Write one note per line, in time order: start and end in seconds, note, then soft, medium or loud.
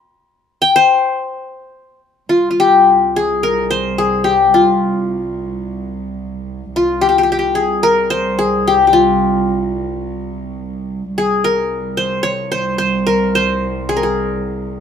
0.62 1.44 G5 loud
0.76 1.98 C5 medium
2.29 6.73 C2 medium
2.29 2.50 F4 medium
2.51 3.85 F4 soft
2.60 3.22 G4 medium
3.16 3.98 G#4 medium
3.43 4.56 A#4 medium
3.71 4.76 C5 medium
3.98 4.30 G#4 medium
4.24 5.50 G4 medium
4.54 5.89 F4 medium
6.74 11.13 C2 medium
6.74 8.11 F4 medium
7.01 7.08 G4 medium
7.09 7.18 G4 medium
7.18 7.23 G4 medium
7.23 7.31 G4 medium
7.32 7.38 G4 medium
7.39 7.61 G4 medium
7.55 8.38 G#4 medium
7.83 8.96 A#4 medium
8.10 9.16 C5 medium
8.39 8.73 G#4 medium
8.67 8.87 G4 medium
8.87 10.13 G4 medium
8.93 10.27 F4 medium
11.14 14.80 C2 medium
11.14 12.39 G#4 medium
11.44 12.57 A#4 medium
11.97 12.29 C5 medium
12.23 12.58 C#5 loud
12.52 12.78 C5 medium
12.78 13.35 C5 medium
13.07 13.96 A#4 medium
13.35 14.41 C5 medium
13.89 14.03 G#4 medium
13.96 14.80 A#4 medium
14.03 14.80 G#4 medium